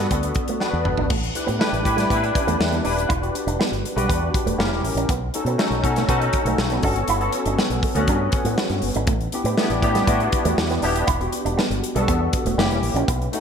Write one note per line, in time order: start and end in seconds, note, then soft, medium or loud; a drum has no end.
0.00 0.60 B3 medium
0.00 0.61 D4 medium
0.00 0.61 F#4 medium
0.00 1.12 A4 medium
0.00 0.46 B4 medium
0.11 0.30 D2 medium
0.11 0.22 B3 medium
0.11 kick medium
0.11 closed hi-hat medium
0.23 muted clean electric guitar stroke soft
0.23 closed hi-hat medium
0.35 kick medium
0.35 closed hi-hat medium
0.48 0.59 A3 medium
0.48 closed hi-hat soft
0.60 0.98 B3 medium
0.60 0.71 B3 medium
0.60 0.99 D4 medium
0.60 0.99 F#4 medium
0.60 0.99 B4 medium
0.60 snare medium
0.73 0.83 E2 medium
0.73 muted clean electric guitar stroke soft
0.85 0.95 G1 medium
0.85 mid tom medium
0.97 1.08 G#1 medium
0.97 1.08 D4 medium
0.97 floor tom medium
1.10 1.30 A1 loud
1.10 1.21 A3 medium
1.10 kick loud
1.10 crash medium
1.24 closed hi-hat soft
1.35 1.54 D4 medium
1.35 1.54 E4 medium
1.35 1.55 G4 medium
1.35 1.55 B4 medium
1.35 muted clean electric guitar stroke soft
1.35 closed hi-hat medium
1.47 1.58 A2 medium
1.47 1.57 B3 medium
1.47 closed hi-hat soft
1.59 1.70 A3 medium
1.59 1.79 D4 medium
1.59 1.79 E4 medium
1.59 1.79 G4 medium
1.59 1.79 B4 medium
1.59 snare loud
1.73 1.82 A1 medium
1.73 closed hi-hat soft
1.84 2.05 A2 medium
1.84 2.04 D4 medium
1.84 2.04 E4 medium
1.84 2.04 G4 medium
1.84 2.05 B4 medium
1.84 muted clean electric guitar stroke soft
1.84 kick medium
1.84 closed hi-hat medium
1.97 2.07 G3 medium
1.97 snare soft
1.97 closed hi-hat soft
2.09 2.30 A2 medium
2.09 2.20 B3 medium
2.09 2.16 C#4 medium
2.09 2.67 E4 medium
2.09 2.67 G4 medium
2.09 2.67 B4 medium
2.09 kick medium
2.09 closed hi-hat medium
2.16 2.70 D4 medium
2.22 muted clean electric guitar stroke soft
2.22 closed hi-hat soft
2.35 kick medium
2.35 closed hi-hat medium
2.47 2.57 E2 medium
2.47 2.58 A3 medium
2.47 closed hi-hat soft
2.59 2.79 E2 medium
2.59 muted clean electric guitar stroke soft
2.59 snare loud
2.72 2.82 B3 medium
2.72 snare soft
2.72 closed hi-hat soft
2.85 3.04 D#1 medium
2.85 2.95 D4 medium
2.85 3.10 D4 medium
2.85 3.10 E4 medium
2.85 3.10 G4 medium
2.85 3.10 B4 medium
2.85 open hi-hat medium
2.98 closed hi-hat soft
3.09 3.29 E1 medium
3.09 3.19 E4 medium
3.09 kick loud
3.09 closed hi-hat medium
3.21 3.78 D4 medium
3.21 3.79 F#4 medium
3.21 3.79 G4 medium
3.21 3.79 B4 medium
3.21 closed hi-hat soft
3.35 muted clean electric guitar stroke soft
3.35 closed hi-hat medium
3.47 3.57 E1 medium
3.47 3.57 D4 medium
3.47 closed hi-hat soft
3.59 3.70 B3 medium
3.59 snare loud
3.72 3.82 G1 medium
3.72 closed hi-hat soft
3.85 muted clean electric guitar stroke soft
3.85 closed hi-hat medium
3.96 4.06 B1 medium
3.96 4.07 G3 medium
3.96 4.59 D4 medium
3.96 4.59 F#4 medium
3.96 4.58 G4 medium
3.96 4.59 B4 medium
3.96 closed hi-hat medium
4.09 4.29 E2 medium
4.09 4.19 B3 medium
4.09 kick medium
4.09 closed hi-hat medium
4.23 muted clean electric guitar stroke soft
4.34 kick loud
4.34 closed hi-hat medium
4.46 4.56 E1 medium
4.46 4.57 A3 medium
4.46 closed hi-hat soft
4.58 4.70 F#1 medium
4.58 4.69 A#3 medium
4.58 4.98 C#4 medium
4.58 4.99 E4 medium
4.58 4.99 G4 medium
4.58 4.99 A#4 medium
4.58 snare loud
4.70 4.80 E1 medium
4.70 muted clean electric guitar stroke soft
4.70 snare soft
4.83 4.93 A1 medium
4.83 open hi-hat medium
4.95 5.05 A#1 medium
4.95 5.07 C#4 medium
4.95 closed hi-hat medium
5.09 5.29 B1 medium
5.09 5.20 B3 medium
5.09 kick loud
5.09 closed hi-hat medium
5.34 5.53 C#4 medium
5.34 5.53 D#4 medium
5.34 5.53 F#4 medium
5.34 5.54 A4 medium
5.34 muted clean electric guitar stroke soft
5.34 closed hi-hat medium
5.45 5.55 B2 medium
5.45 5.57 B3 medium
5.45 closed hi-hat soft
5.58 5.69 A3 medium
5.58 5.77 C#4 medium
5.58 5.77 D#4 medium
5.58 5.78 F#4 medium
5.58 5.78 A4 medium
5.58 snare loud
5.70 5.80 B1 medium
5.70 closed hi-hat soft
5.83 6.03 B2 medium
5.83 6.02 C#4 medium
5.83 6.03 D#4 medium
5.83 6.03 F#4 medium
5.83 6.03 A4 medium
5.83 muted clean electric guitar stroke soft
5.83 kick medium
5.83 closed hi-hat medium
5.96 6.07 A3 medium
5.96 snare soft
5.96 closed hi-hat soft
6.08 6.28 B2 medium
6.08 6.20 B3 medium
6.08 6.65 C#4 medium
6.08 6.66 D#4 medium
6.08 6.66 F#4 medium
6.08 6.66 A4 medium
6.08 kick medium
6.08 closed hi-hat medium
6.22 muted clean electric guitar stroke soft
6.22 closed hi-hat soft
6.33 kick loud
6.33 closed hi-hat medium
6.45 6.55 B1 medium
6.45 6.57 A3 medium
6.45 closed hi-hat medium
6.58 6.78 B1 medium
6.58 muted clean electric guitar stroke soft
6.58 snare loud
6.70 6.82 B3 medium
6.70 snare soft
6.70 closed hi-hat soft
6.82 7.03 G1 loud
6.82 7.13 B3 medium
6.82 7.13 C#4 medium
6.82 6.94 D4 medium
6.82 7.13 F#4 medium
6.82 7.13 A4 medium
6.82 kick medium
6.82 open hi-hat medium
6.96 closed hi-hat medium
7.08 7.28 G1 medium
7.08 7.19 E4 medium
7.08 closed hi-hat medium
7.20 7.77 B3 medium
7.20 7.78 C#4 medium
7.20 7.78 F#4 medium
7.20 7.78 A4 medium
7.20 closed hi-hat soft
7.32 muted clean electric guitar stroke soft
7.32 closed hi-hat medium
7.46 7.55 G1 medium
7.46 7.57 D4 medium
7.46 closed hi-hat soft
7.59 7.69 B3 medium
7.59 snare medium
7.70 7.80 B1 medium
7.70 closed hi-hat soft
7.83 muted clean electric guitar stroke soft
7.83 kick medium
7.83 open hi-hat medium
7.95 8.05 D2 medium
7.95 8.07 A3 medium
7.95 8.71 B3 medium
7.95 8.71 C#4 medium
7.95 8.72 F#4 medium
7.95 8.72 B4 medium
7.95 closed hi-hat medium
8.08 8.27 G2 medium
8.08 8.19 D4 medium
8.08 kick medium
8.08 closed hi-hat medium
8.22 muted clean electric guitar stroke soft
8.32 kick loud
8.32 closed hi-hat medium
8.45 8.55 A2 medium
8.45 8.56 A3 medium
8.45 closed hi-hat medium
8.58 8.69 B3 medium
8.58 snare loud
8.69 8.80 G2 medium
8.69 muted clean electric guitar stroke soft
8.69 snare soft
8.69 closed hi-hat soft
8.82 8.92 G1 medium
8.82 open hi-hat medium
8.95 9.05 G#1 medium
8.95 9.06 D4 medium
8.95 closed hi-hat medium
9.07 9.27 A1 loud
9.07 9.18 A3 medium
9.07 kick loud
9.07 closed hi-hat medium
9.21 closed hi-hat soft
9.32 9.52 B3 medium
9.32 9.52 D4 medium
9.32 9.52 E4 medium
9.32 9.53 G4 medium
9.32 muted clean electric guitar stroke soft
9.32 closed hi-hat medium
9.44 9.54 A2 medium
9.44 9.56 B3 medium
9.44 closed hi-hat soft
9.58 9.68 A3 medium
9.58 9.77 B3 medium
9.58 9.77 D4 medium
9.58 9.77 E4 medium
9.58 9.78 G4 medium
9.58 snare loud
9.70 9.80 A1 medium
9.70 closed hi-hat soft
9.82 10.02 A2 medium
9.82 10.02 B3 medium
9.82 10.02 D4 medium
9.82 10.02 E4 medium
9.82 10.02 G4 medium
9.82 muted clean electric guitar stroke soft
9.82 kick medium
9.82 closed hi-hat medium
9.95 10.06 G3 medium
9.95 snare soft
9.95 closed hi-hat soft
10.07 10.27 A2 medium
10.07 10.64 B3 medium
10.07 10.18 B3 medium
10.07 10.65 D4 medium
10.07 10.65 E4 medium
10.07 10.65 F#4 medium
10.07 kick medium
10.07 closed hi-hat medium
10.20 muted clean electric guitar stroke soft
10.20 closed hi-hat soft
10.32 kick loud
10.32 closed hi-hat medium
10.45 10.55 E2 medium
10.45 10.56 A3 medium
10.45 closed hi-hat medium
10.58 10.77 E2 medium
10.58 muted clean electric guitar stroke soft
10.58 snare loud
10.70 10.81 B3 medium
10.70 snare soft
10.70 closed hi-hat soft
10.82 11.02 D#1 medium
10.82 11.08 B3 medium
10.82 10.93 D4 medium
10.82 11.08 D4 medium
10.82 11.08 E4 medium
10.82 11.08 G4 loud
10.82 open hi-hat medium
10.96 closed hi-hat medium
11.07 11.27 E1 loud
11.07 11.17 E4 medium
11.07 kick loud
11.07 closed hi-hat medium
11.20 11.77 B3 medium
11.20 11.77 D4 medium
11.20 11.77 F#4 medium
11.20 11.78 G4 medium
11.20 closed hi-hat soft
11.32 muted clean electric guitar stroke soft
11.32 closed hi-hat medium
11.45 11.55 E1 medium
11.45 11.55 D4 medium
11.45 closed hi-hat soft
11.57 11.68 B3 medium
11.57 snare loud
11.70 11.80 G1 medium
11.70 closed hi-hat soft
11.83 muted clean electric guitar stroke soft
11.83 closed hi-hat medium
11.95 12.05 B1 medium
11.95 12.06 G3 medium
11.95 12.58 B3 medium
11.95 12.58 D4 medium
11.95 12.58 F#4 medium
11.95 12.58 A4 loud
11.95 closed hi-hat soft
12.08 12.28 E2 loud
12.08 12.18 B3 loud
12.08 kick medium
12.08 closed hi-hat medium
12.21 muted clean electric guitar stroke soft
12.33 kick loud
12.33 closed hi-hat medium
12.45 12.55 E1 medium
12.45 12.56 A3 medium
12.45 closed hi-hat medium
12.57 12.69 F#1 loud
12.57 12.98 A#3 medium
12.57 12.68 A#3 medium
12.57 12.98 C#4 medium
12.57 12.98 E4 medium
12.57 12.98 G4 medium
12.57 snare loud
12.69 12.79 E1 medium
12.69 muted clean electric guitar stroke soft
12.69 snare soft
12.69 closed hi-hat soft
12.82 12.92 A1 medium
12.82 open hi-hat medium
12.94 13.04 A#1 medium
12.94 13.06 C#4 medium
12.94 closed hi-hat medium
13.08 13.27 B1 medium
13.08 13.18 B3 medium
13.08 kick loud
13.08 closed hi-hat loud
13.22 closed hi-hat soft
13.32 13.40 A3 medium
13.32 13.40 C#4 medium
13.32 13.40 D#4 medium
13.32 13.40 F#4 medium
13.32 muted clean electric guitar stroke soft
13.32 closed hi-hat medium